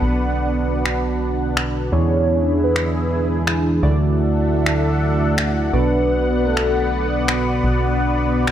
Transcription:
0.00 1.90 B1 medium
0.00 1.90 B2 medium
0.00 1.89 B3 medium
0.00 1.90 B3 medium
0.00 1.90 D4 medium
0.00 3.79 D4 medium
0.00 1.90 F#4 medium
0.00 1.89 B4 medium
0.00 1.90 D5 medium
0.00 1.89 F#5 medium
0.86 finger snap medium
1.57 finger snap medium
1.92 3.80 E2 medium
1.92 3.80 E3 medium
1.92 3.80 B3 medium
1.92 3.80 D4 medium
1.92 3.80 E4 medium
1.92 3.81 E4 medium
1.92 3.80 G#4 medium
1.92 3.81 G#4 medium
1.92 2.54 C#5 loud
2.64 3.26 B4 medium
2.76 finger snap medium
3.47 finger snap medium
3.83 5.71 D2 medium
3.83 5.71 D3 medium
3.83 5.71 A3 medium
3.83 5.71 D4 medium
3.83 5.71 E4 medium
3.83 5.71 F#4 medium
3.83 5.71 A4 medium
3.83 5.71 D5 medium
3.83 5.71 E5 medium
3.83 8.51 F#5 medium
4.66 finger snap medium
5.38 finger snap medium
5.73 7.61 B1 medium
5.73 8.51 B2 medium
5.73 8.51 B3 medium
5.73 8.51 D4 medium
5.73 8.51 F#4 medium
5.73 8.51 B4 medium
5.73 6.46 B4 medium
5.73 8.51 D5 medium
6.45 7.07 A4 medium
6.57 finger snap medium
7.28 finger snap medium
7.64 8.51 B1 medium
8.47 finger snap medium

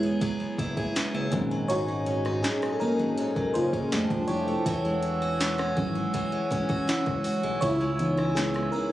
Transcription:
0.00 0.12 E1 medium
0.00 0.21 F#3 medium
0.00 1.35 G#3 medium
0.00 1.35 B3 medium
0.00 0.39 B3 medium
0.00 0.58 E4 medium
0.00 1.31 E4 medium
0.00 1.35 E4 medium
0.00 0.22 G#4 medium
0.00 1.52 G#4 medium
0.00 3.88 G#4 medium
0.00 1.73 B4 medium
0.00 1.35 C#5 medium
0.00 1.29 G#5 medium
0.21 1.51 F#3 medium
0.21 0.77 G#4 medium
0.21 kick medium
0.21 closed hi-hat medium
0.40 0.47 F#1 medium
0.40 0.95 B3 medium
0.58 0.86 F#1 medium
0.58 1.13 E4 medium
0.58 kick medium
0.58 closed hi-hat medium
0.77 1.54 G#4 medium
0.77 kick medium
0.95 1.03 F#1 soft
0.95 1.40 B3 medium
0.95 snare loud
0.95 closed hi-hat medium
1.14 1.28 F#1 medium
1.14 1.40 E4 medium
1.32 2.44 G#1 loud
1.32 1.68 G#2 medium
1.32 2.40 A#2 medium
1.32 2.40 F#3 medium
1.32 2.40 C#4 medium
1.32 3.89 D#5 medium
1.32 3.89 G#5 medium
1.32 kick loud
1.32 closed hi-hat medium
1.51 1.87 F#3 medium
1.68 3.17 G#2 medium
1.68 2.24 D#4 medium
1.68 3.91 D#4 medium
1.68 2.40 F#4 medium
1.68 2.45 C#5 loud
1.68 closed hi-hat medium
1.88 2.42 F#3 medium
2.06 2.61 C#4 medium
2.06 closed hi-hat medium
2.25 2.80 D#4 medium
2.25 cross-stick medium
2.43 2.98 F#3 medium
2.43 2.72 C#4 medium
2.43 2.74 G#4 medium
2.43 snare loud
2.43 closed hi-hat medium
2.62 3.54 C#4 medium
2.62 cross-stick loud
2.72 2.80 A4 medium
2.80 2.88 G#1 soft
2.80 3.14 F#3 soft
2.80 3.14 A#3 soft
2.80 3.51 C#4 medium
2.80 3.17 D#4 medium
2.80 3.50 A#4 loud
2.99 3.13 G#1 medium
2.99 3.35 F#3 medium
3.17 3.99 G#2 medium
3.17 3.72 D#4 medium
3.17 closed hi-hat medium
3.36 3.44 F#1 soft
3.36 3.92 F#3 medium
3.36 kick medium
3.54 3.83 F#1 loud
3.54 4.00 C#4 medium
3.54 4.25 F4 medium
3.54 4.31 C5 loud
3.54 closed hi-hat medium
3.73 3.99 D#4 medium
3.73 kick medium
3.91 4.06 F1 loud
3.91 4.66 F3 medium
3.91 4.41 G3 medium
3.91 4.41 A3 medium
3.91 4.41 D4 medium
3.91 4.65 A4 medium
3.91 4.66 G5 medium
3.91 4.66 A5 medium
3.91 snare loud
3.91 closed hi-hat medium
4.10 4.24 E1 medium
4.10 4.74 D4 medium
4.10 kick loud
4.28 4.57 F1 loud
4.28 5.73 E4 medium
4.28 4.66 G4 medium
4.28 5.72 C#5 medium
4.28 closed hi-hat medium
4.48 4.74 A3 medium
4.66 5.73 E1 loud
4.66 6.13 E3 medium
4.66 6.87 F#4 medium
4.66 5.21 F#4 medium
4.66 8.92 C#5 medium
4.66 7.59 F#5 medium
4.66 8.92 G#5 medium
4.66 8.92 E6 medium
4.66 kick loud
4.66 closed hi-hat medium
4.85 5.40 G#3 medium
5.03 5.58 C#4 medium
5.03 closed hi-hat medium
5.22 5.75 F#4 medium
5.40 5.95 G#3 medium
5.40 snare loud
5.40 closed hi-hat medium
5.58 6.50 C#4 medium
5.58 cross-stick loud
5.77 6.05 G#1 loud
5.77 6.26 F#3 medium
5.77 6.26 G#3 medium
5.77 6.27 C#4 medium
5.77 6.13 F#4 medium
5.77 kick medium
5.95 6.32 G#3 medium
6.14 7.80 E3 medium
6.14 6.68 F#4 medium
6.14 kick medium
6.14 closed hi-hat medium
6.32 6.40 E1 medium
6.32 6.87 G#3 medium
6.51 6.79 E1 medium
6.51 7.06 C#4 medium
6.51 kick medium
6.51 closed hi-hat medium
6.69 7.23 F#4 medium
6.69 kick medium
6.88 6.96 F#1 soft
6.88 7.43 G#3 medium
6.88 7.96 E4 medium
6.88 snare loud
6.88 closed hi-hat medium
7.06 7.21 F#1 medium
7.06 7.62 C#4 medium
7.06 kick loud
7.24 7.69 F#4 medium
7.24 open hi-hat medium
7.43 7.58 B1 medium
7.43 7.80 G#3 medium
7.61 8.69 C#2 loud
7.61 8.92 C#3 medium
7.61 8.17 E4 medium
7.61 8.33 E4 medium
7.61 8.38 C#5 loud
7.61 kick loud
7.61 closed hi-hat medium
7.80 8.36 G#3 medium
7.99 8.92 E3 medium
7.99 8.54 B3 medium
7.99 8.36 B3 medium
7.99 8.92 D#4 medium
7.99 closed hi-hat medium
8.17 8.73 E4 medium
8.17 cross-stick medium
8.35 8.91 G#3 medium
8.35 8.72 B3 medium
8.35 8.74 G#4 medium
8.35 snare loud
8.35 closed hi-hat medium
8.54 8.92 B3 medium
8.54 cross-stick loud
8.72 8.81 B1 soft
8.72 8.92 C#4 medium
8.72 8.92 E4 medium
8.72 8.92 A#4 loud

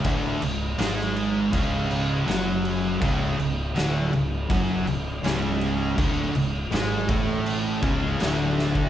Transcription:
0.04 0.40 D1 loud
0.04 0.41 D2 loud
0.04 0.41 D3 loud
0.04 kick loud
0.04 crash medium
0.42 0.77 C#1 medium
0.42 0.72 C#2 medium
0.42 crash medium
0.78 1.49 G#1 loud
0.78 1.52 G#2 medium
0.78 1.52 G#3 loud
0.78 snare loud
0.78 crash medium
1.00 snare soft
1.16 crash medium
1.53 2.23 C#1 loud
1.53 2.26 C#2 medium
1.53 2.26 C#3 loud
1.53 kick loud
1.53 crash medium
1.91 crash medium
2.27 2.98 F#1 loud
2.27 3.00 F#2 medium
2.27 3.00 F#3 loud
2.27 snare loud
2.27 crash medium
2.65 crash medium
3.00 3.36 C#1 loud
3.00 3.37 C#2 medium
3.00 3.37 C#3 loud
3.00 kick loud
3.00 crash medium
3.38 3.74 C#1 medium
3.38 3.68 C#2 medium
3.38 crash medium
3.75 4.11 D1 loud
3.75 4.11 D2 medium
3.75 4.11 D3 loud
3.75 snare loud
3.75 crash medium
4.12 4.48 C#1 medium
4.12 4.42 C#2 medium
4.12 crash medium
4.49 4.84 F#1 medium
4.49 4.85 F#2 medium
4.49 4.86 F#3 loud
4.49 kick loud
4.49 crash medium
4.86 5.22 C#1 medium
4.86 5.16 C#2 medium
4.86 crash medium
5.23 5.94 C#1 loud
5.23 5.96 C#2 loud
5.23 5.97 C#3 loud
5.23 snare loud
5.23 crash medium
5.61 crash medium
5.97 6.32 D1 medium
5.97 6.33 D2 loud
5.97 6.34 D3 loud
5.97 kick loud
5.97 crash medium
6.34 6.69 C#1 medium
6.34 6.64 C#2 medium
6.34 crash medium
6.71 7.06 G#1 loud
6.71 7.07 G#2 medium
6.71 7.07 G#3 loud
6.71 snare loud
6.71 crash medium
7.08 7.79 A1 loud
7.08 7.81 A2 loud
7.08 7.82 A3 loud
7.08 kick loud
7.08 crash medium
7.46 crash medium
7.82 8.17 C#1 medium
7.82 8.18 C#2 medium
7.82 8.19 C#3 loud
7.82 kick loud
7.82 crash medium
8.19 8.89 D1 loud
8.19 8.89 D2 medium
8.19 8.89 D3 loud
8.19 snare loud
8.19 crash medium
8.59 snare medium
8.75 kick medium

